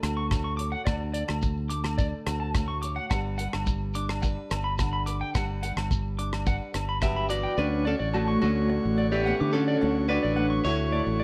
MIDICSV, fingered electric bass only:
0, 0, Header, 1, 2, 480
1, 0, Start_track
1, 0, Key_signature, 2, "major"
1, 0, Tempo, 558659
1, 751, Time_signature, 4, 2, 24, 8
1, 9656, End_track
2, 0, Start_track
2, 0, Title_t, "Fingered electric bass"
2, 0, Program_c, 0, 33
2, 26, Note_on_c, 0, 38, 77
2, 634, Note_off_c, 0, 38, 0
2, 743, Note_on_c, 0, 38, 81
2, 1051, Note_off_c, 0, 38, 0
2, 1112, Note_on_c, 0, 38, 76
2, 1818, Note_off_c, 0, 38, 0
2, 1949, Note_on_c, 0, 38, 77
2, 2557, Note_off_c, 0, 38, 0
2, 2672, Note_on_c, 0, 31, 80
2, 2977, Note_off_c, 0, 31, 0
2, 3043, Note_on_c, 0, 31, 76
2, 3746, Note_off_c, 0, 31, 0
2, 3877, Note_on_c, 0, 31, 76
2, 4483, Note_off_c, 0, 31, 0
2, 4598, Note_on_c, 0, 31, 84
2, 4902, Note_off_c, 0, 31, 0
2, 4953, Note_on_c, 0, 31, 79
2, 5661, Note_off_c, 0, 31, 0
2, 5795, Note_on_c, 0, 31, 69
2, 6402, Note_off_c, 0, 31, 0
2, 6509, Note_on_c, 0, 38, 100
2, 6817, Note_off_c, 0, 38, 0
2, 6875, Note_on_c, 0, 33, 76
2, 7178, Note_off_c, 0, 33, 0
2, 7240, Note_on_c, 0, 38, 80
2, 7542, Note_off_c, 0, 38, 0
2, 7605, Note_on_c, 0, 33, 76
2, 8006, Note_off_c, 0, 33, 0
2, 8083, Note_on_c, 0, 50, 92
2, 8382, Note_off_c, 0, 50, 0
2, 8444, Note_on_c, 0, 38, 99
2, 8744, Note_off_c, 0, 38, 0
2, 8802, Note_on_c, 0, 33, 78
2, 9101, Note_off_c, 0, 33, 0
2, 9147, Note_on_c, 0, 38, 87
2, 9454, Note_off_c, 0, 38, 0
2, 9508, Note_on_c, 0, 33, 79
2, 9656, Note_off_c, 0, 33, 0
2, 9656, End_track
0, 0, End_of_file